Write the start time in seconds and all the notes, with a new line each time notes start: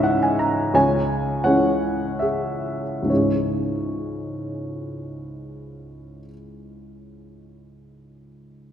Already playing: C#2 G#2 C#3 E3 G#4 C#5 D#5 E5
0.03 F#5
0.23 G#5
0.39 A#5
0.74 C#2 C#5 G#5
1.44 E3 G#3 C#4 C#5 F#5
2.19 G#4 E5
3.03 C#2 G#2
3.08 E3 G#3 C#5
3.14 C#4 G#4